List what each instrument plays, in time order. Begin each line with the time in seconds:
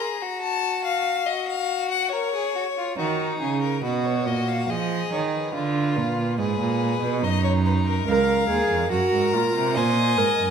0.00 violin G#4 A#5
0.22 violin F#4
0.41 violin A5
0.84 violin F5
1.26 violin F#4 D#5
1.48 violin F5
1.91 violin F#5
2.11 violin A#4 C#5
2.34 violin G#4
2.56 violin F#4
2.78 violin F4
2.98 cello D#3, violin D#4 F#4
3.41 cello C#3, violin G#4
3.62 violin A#4
3.83 cello B2, violin F#4 B4
4.05 violin C#5
4.27 cello A#2, violin D#5
4.48 violin F5
4.69 cello F3, violin G#4 D#5
5.12 cello D#3, violin C#5
5.34 violin B4
5.55 cello D3, violin F4
5.97 cello A#2
6.39 cello G#2, violin G#4 B4
6.60 cello A#2
7.02 cello B2
7.22 cello F#2, violin D#4 D#5
7.44 violin C#5
7.66 violin B4
7.86 violin A#4
8.07 cello C#2, viola A#4, violin A#4 F5
8.49 cello D#2, viola G#4
8.70 cello F2
8.91 cello F#2, viola F#4, violin A#4 A#5
9.12 cello G#2
9.33 cello A#2, viola F4
9.55 cello C3
9.75 cello A#2, viola C5, violin D#5 G#5
10.18 cello G#2, viola A#4
10.39 cello F#2